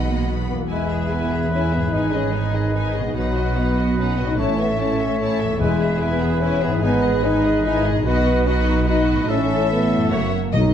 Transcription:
Already playing: double bass section B1, cello section B2, harp B2 B3 F#4, french horn section D#4, violin section D#5 F#5 B5
0.07 viola section A#3, harp B4
0.27 viola section B3, harp F#4
0.49 harp E2 B3, french horn section B3
0.54 french horn section A#3, harp B3
0.61 harp E4
0.66 double bass section E1, french horn section G#3, viola section E4, clarinet G#4, harp B4, flute E5, violin section G#5
0.70 cello section E2, violin section B4, oboe B4
0.89 violin section G#4 E5, viola section G#4
1.09 french horn section B3, viola section E4, violin section B4 G#5
1.31 violin section G#4 E5, viola section G#4
1.51 french horn section C#4, viola section E4, violin section B4 G#5
1.71 harp G#2, french horn section B3, violin section G#4 E5, viola section G#4
1.80 harp B3, french horn section E4
1.84 harp D#4
1.88 french horn section D#4, harp G#4
1.93 double bass section G#1, cello section G#2, viola section D#4, violin section B4 G#5, flute D#5
2.12 french horn section C#4, viola section G#4, violin section G#4 D#5
2.32 french horn section D#4, viola section D#4, violin section B4 G#5
2.54 violin section G#4 D#5, viola section G#4
2.74 french horn section D#4, viola section D#4, violin section B4 G#5
2.94 french horn section C#4, violin section G#4 D#5, viola section G#4
2.98 harp B2, french horn section B3
3.02 harp B3
3.07 harp D#4
3.12 double bass section B1, french horn section F#3, viola section D#4, harp F#4, violin section B4
3.16 cello section B2, clarinet F#4, oboe B4, violin section F#5
3.36 viola section F#4, violin section D#5
3.56 french horn section B3, viola section D#4, violin section B4 F#5
3.77 viola section F#4, violin section D#5
3.97 french horn section C#4, viola section D#4, violin section B4 F#5
4.18 harp A2, french horn section B3, viola section F#4, violin section D#5
4.25 harp C#4, french horn section D#4
4.29 harp E4
4.34 double bass section A1, french horn section C#4, harp A4, flute E5
4.38 cello section A2, viola section E4, clarinet A4, violin section C#5 A5, oboe C#5
4.58 french horn section B3, viola section A4, violin section E5
4.78 french horn section C#4, viola section E4, violin section C#5 A5
4.99 viola section A4, violin section E5
5.19 french horn section C#4, viola section E4, violin section C#5 A5
5.40 harp E2, viola section A4, violin section E5
5.47 harp B3
5.52 harp E4
5.56 french horn section G#3, viola section E4, harp G#4, clarinet G#4, flute E5
5.60 double bass section E1, cello section E2, timpani E2, violin section B4 G#5, oboe B4
5.81 viola section G#4, violin section G#4 E5
6.00 french horn section B3, viola section E4, clarinet G#4, violin section B4 G#5, oboe B4, flute E5
6.21 viola section G#4, violin section G#4 E5
6.41 french horn section C#4, viola section E4, violin section B4 G#5
6.61 french horn section B3, violin section G#4 E5, viola section G#4
6.66 harp G#2
6.70 harp B3, french horn section E4
6.75 harp D#4
6.79 double bass section G#1, cello section G#2, viola section D#4, harp G#4, clarinet G#4, violin section B4 G#5, flute D#5
6.84 french horn section B3, oboe B4
7.02 violin section G#4 D#5, viola section G#4
7.22 french horn section D#4, viola section D#4, clarinet G#4, violin section B4 G#5, oboe B4, flute D#5
7.42 violin section G#4 D#5, viola section G#4
7.64 viola section D#4, french horn section E4, violin section B4 G#5
7.85 harp B2, french horn section E4, viola section G#4, violin section G#4 D#5
7.92 harp B3, french horn section D#4
7.97 harp D#4
8.02 double bass section B1, cello section B2, harp F#4, clarinet F#4, flute D#5, violin section D#5
8.07 french horn section B3, viola section F#4, oboe B4, violin section B4
8.46 french horn section D#4, clarinet F#4, viola section F#4, violin section B4 D#5, oboe B4, flute D#5
8.87 french horn section D#4, viola section F#4, clarinet F#4, violin section B4 D#5, oboe B4, flute D#5
9.11 harp A2
9.16 harp E4
9.21 harp A4
9.29 double bass section A1, cello section A2, french horn section C#4, clarinet E4, oboe A4, viola section A4, violin section E5, flute E5
9.71 french horn section B3
9.96 harp F#2
10.00 harp E4
10.04 harp F#4
10.09 double bass section F#1, cello section F#2, french horn section A#3, clarinet F#4, harp C#5, viola section C#5, oboe C#5, flute E5, violin section E5 F#5
10.53 double bass section B1, tuba B1, timpani B2, cello section B2, harp B2, french horn section D#4, violin section D#5
10.65 harp F#3

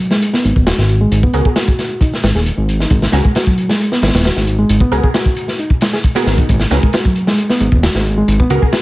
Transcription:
0.11 reed electric piano G#3, snare
0.22 closed hi-hat
0.33 reed electric piano B3, snare
0.44 analog synth bass G#1, closed hi-hat
0.56 analog synth bass D#1, kick
0.66 reed electric piano F#4, snare, closed hi-hat
0.78 analog synth bass G#1, snare
0.89 closed hi-hat
1.01 reed electric piano G#3
1.11 analog synth bass G#1, closed hi-hat
1.23 reed electric piano B3, kick
1.33 analog synth bass C#2, synth stab B3 F#4 G#4 A#4, reed electric piano G#4, closed hi-hat
1.45 reed electric piano G#4, kick
1.56 reed electric piano F#4, snare, closed hi-hat
1.68 kick
1.79 snare, closed hi-hat
2.01 reed electric piano D#4, kick, closed hi-hat
2.13 snare
2.23 analog synth bass G#1, reed electric piano G#3, snare, open hi-hat
2.35 analog synth bass D#1, reed electric piano G#4, snare
2.46 closed hi-hat
2.57 analog synth bass G#1
2.69 closed hi-hat
2.80 reed electric piano D#4, snare
2.90 analog synth bass G#1, reed electric piano G#3, kick, closed hi-hat
3.02 snare
3.12 analog synth bass C#2, synth stab B3 F#4 G#4 A#4, reed electric piano C#4, snare, closed hi-hat
3.25 reed electric piano G#3, kick
3.35 reed electric piano F#4, snare, closed hi-hat
3.47 reed electric piano F#3, kick
3.58 closed hi-hat
3.69 reed electric piano G#3, snare
3.81 closed hi-hat
3.92 reed electric piano B3, snare
4.02 analog synth bass G#1, snare, closed hi-hat
4.08 snare, closed hi-hat
4.14 analog synth bass D#1, snare, closed hi-hat
4.19 snare, closed hi-hat
4.25 reed electric piano F#4, snare, closed hi-hat
4.36 analog synth bass G#1, snare
4.47 closed hi-hat
4.59 reed electric piano G#3
4.69 analog synth bass G#1, closed hi-hat
4.80 reed electric piano B3, kick
4.92 analog synth bass C#2, synth stab B3 F#4 G#4 A#4, reed electric piano G#4, closed hi-hat
5.04 reed electric piano G#4, kick
5.14 reed electric piano F#4, snare, closed hi-hat
5.26 kick
5.37 closed hi-hat
5.48 snare
5.59 reed electric piano D#4, closed hi-hat
5.70 kick
5.81 reed electric piano G#3, snare, closed hi-hat
5.93 reed electric piano G#4, snare
6.04 kick, closed hi-hat
6.15 synth stab B3 F#4 G#4 A#4, snare
6.26 analog synth bass G#1, snare, closed hi-hat
6.38 reed electric piano D#4, kick, closed hi-hat
6.49 analog synth bass G#1, reed electric piano G#3, kick, closed hi-hat
6.60 snare
6.71 analog synth bass C#2, synth stab B3 F#4 G#4 A#4, reed electric piano C#4, snare, closed hi-hat
6.83 reed electric piano G#3, kick
6.93 reed electric piano F#4, snare, closed hi-hat
7.05 reed electric piano F#3, kick
7.16 closed hi-hat
7.27 reed electric piano G#3, snare
7.38 closed hi-hat
7.49 reed electric piano B3, snare
7.60 analog synth bass G#1, closed hi-hat
7.72 analog synth bass D#1, kick
7.83 reed electric piano F#4, snare, closed hi-hat
7.94 analog synth bass G#1, snare
8.06 closed hi-hat
8.17 reed electric piano G#3
8.28 analog synth bass G#1, closed hi-hat
8.40 reed electric piano B3, kick
8.50 analog synth bass C#2, synth stab B3 F#4 G#4 A#4, reed electric piano G#4, closed hi-hat
8.62 reed electric piano G#4, kick
8.73 reed electric piano F#4, snare, closed hi-hat

